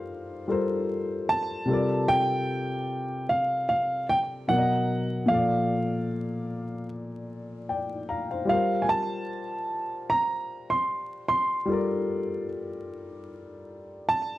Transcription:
Already playing: G3 F4 A4 A#4 C5 F5
0.48 G3 F4 A4 A#4
0.52 C5
1.29 A5
1.65 C3 G3 F4
1.70 A4 A#4 D5
2.08 G5
3.29 F5
3.69 F5
4.09 G5
4.48 B2 F#3 A#4 F#5
4.52 D5
4.58 D#5
5.26 A#2 F3 F5
5.31 A4 D5
7.69 D5 G5
8.09 F5 A#5
8.31 C5 F5
8.45 G3 F4 G4
8.49 A#4 C5 F5
8.82 G#5
8.89 A5
10.10 A#5
10.70 C6
11.28 C6
11.65 G3 F4
11.70 A4 A#4 D5
14.09 A5

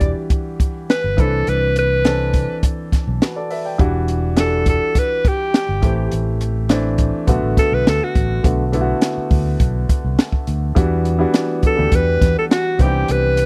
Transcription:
Already playing: E1 E3 G3 D4 F#4 G4 D5
0.01 kick, closed hi-hat
0.30 kick, closed hi-hat
0.60 kick, closed hi-hat
0.90 B4, snare, closed hi-hat
1.04 G1
1.17 C2 E3 C4 D4 A4 B4, kick, closed hi-hat
1.47 C2 B4, closed hi-hat
1.76 B4, closed hi-hat
2.05 E3 C4 D4 A4, snare, closed hi-hat
2.33 kick, closed hi-hat
2.63 kick, closed hi-hat
2.92 muted fingered electric bass stroke, kick, snare, closed hi-hat
3.07 B1
3.22 F#4 B4, snare, closed hi-hat
3.36 A4 D5
3.50 B4 E5, open hi-hat
3.65 D5 G5
3.78 E1 E3 G3 D4 F#4, kick, closed hi-hat
4.08 closed hi-hat
4.36 E3 G3 D4 F#4 A4, snare, closed hi-hat
4.66 A4, kick, closed hi-hat
4.95 B4, kick, closed hi-hat
5.25 G4, kick, closed hi-hat
5.54 snare, closed hi-hat
5.69 G1
5.82 A1 E3 A3 C4 G4, kick, closed hi-hat
6.12 A1, closed hi-hat
6.41 closed hi-hat
6.69 E3 A3 C4 D4, snare, closed hi-hat
6.98 kick, closed hi-hat
7.27 B1 D3 A3 B3 F#4, kick, closed hi-hat
7.43 A1
7.57 A4, kick, snare, closed hi-hat
7.72 B1 B4
7.87 D2 A4, snare, closed hi-hat
8.04 F#4
8.15 A1, kick, closed hi-hat
8.43 B1 D3 A3 B3 F#4, kick, closed hi-hat
8.72 D3 A3 B3 E4, closed hi-hat
8.81 F#4
9.02 snare, closed hi-hat
9.18 muted fingered electric bass stroke
9.30 D2, kick, open hi-hat
9.60 B1, kick, closed hi-hat
9.89 kick, closed hi-hat
10.04 C2
10.19 snare, closed hi-hat
10.32 kick
10.47 D2, closed hi-hat
10.75 E2 E3 G3 B3 D4 F#4, kick, closed hi-hat
11.05 closed hi-hat
11.19 E3 G3 B3 D4 F#4
11.34 snare, closed hi-hat
11.63 muted fingered electric bass stroke, kick, closed hi-hat
11.67 A4
11.77 D2 E3 G3 B3 D4 G4
11.92 E2 B4, kick, closed hi-hat
12.21 E2, kick, snare, closed hi-hat
12.38 A4
12.51 F#4, snare, closed hi-hat
12.79 C2 D#3 B3 C4 D4 G4, kick, closed hi-hat
12.85 E3
13.08 C2 B4, closed hi-hat
13.37 closed hi-hat

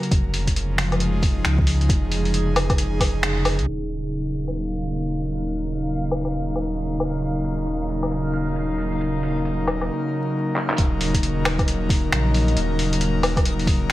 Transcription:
Already playing: C#3 F#3 A#3 F#4 A#4
0.03 closed hi-hat
0.11 F1 C#3, kick, closed hi-hat
0.30 F3, open hi-hat
0.47 kick, closed hi-hat
0.53 G#3, closed hi-hat
0.78 finger snap, open hi-hat
0.91 D#4, closed hi-hat, low woodblock
1.00 closed hi-hat
1.22 kick, open hi-hat
1.45 C#2, finger snap, closed hi-hat
1.58 kick
1.67 open hi-hat
1.74 G#4
1.81 closed hi-hat
1.89 F1, kick, closed hi-hat
2.12 open hi-hat
2.25 open hi-hat
2.34 closed hi-hat
2.56 open hi-hat, low woodblock
2.69 kick, closed hi-hat, low woodblock
2.78 F1, closed hi-hat
3.00 kick, open hi-hat, low woodblock
3.23 finger snap, closed hi-hat
3.45 open hi-hat, low woodblock
3.59 C#2, closed hi-hat
3.68 D#1 F5
3.85 F#3 A#4
3.90 open hi-hat
4.03 closed hi-hat
4.12 A#3, closed hi-hat
4.34 open hi-hat
4.48 low woodblock
4.56 closed hi-hat
4.78 open hi-hat
5.01 closed hi-hat
5.22 open hi-hat
5.36 closed hi-hat
5.45 closed hi-hat
5.67 open hi-hat
5.81 open hi-hat
5.89 closed hi-hat
6.11 open hi-hat, low woodblock
6.25 closed hi-hat, low woodblock
6.33 closed hi-hat
6.56 open hi-hat, low woodblock
6.77 closed hi-hat
7.00 open hi-hat, low woodblock
7.13 closed hi-hat
7.22 closed hi-hat
7.44 open hi-hat
7.58 closed hi-hat
7.67 closed hi-hat
7.89 open hi-hat
8.03 closed hi-hat, low woodblock
8.11 closed hi-hat
8.34 open hi-hat
8.56 closed hi-hat
8.78 open hi-hat
8.92 closed hi-hat
9.01 closed hi-hat
9.23 open hi-hat
9.37 open hi-hat
9.45 closed hi-hat
9.67 open hi-hat, low woodblock
9.81 closed hi-hat, low woodblock
10.56 clap
10.70 clap
10.78 D#1 D#5, kick, closed hi-hat
11.01 open hi-hat
11.14 kick, closed hi-hat
11.23 closed hi-hat
11.45 finger snap, open hi-hat, low woodblock
11.59 kick, closed hi-hat, low woodblock
11.68 closed hi-hat
11.89 kick, open hi-hat
12.12 A#1, finger snap, closed hi-hat
12.34 open hi-hat
12.48 closed hi-hat
12.56 D#1, closed hi-hat
12.79 open hi-hat
12.93 closed hi-hat
13.01 closed hi-hat
13.23 open hi-hat, low woodblock
13.36 kick, closed hi-hat, low woodblock
13.45 closed hi-hat
13.59 open hi-hat
13.67 kick, open hi-hat

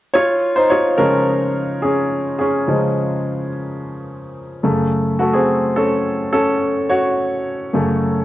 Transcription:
0.14 F4 C#5
0.56 D#4 C5
0.70 F4 C#5
0.98 C#3 F3 G#3 C#4 A#4
1.82 C#4 G#4
2.39 C#4 G#4
2.67 C#3 F3 G#3
4.63 F#2 C#3 A3
5.19 A3 F#4
5.33 C4 G#4
5.76 C#4 A4
6.33 C#4 A4
6.89 F#4 C#5
7.73 F#2 C#3 A3

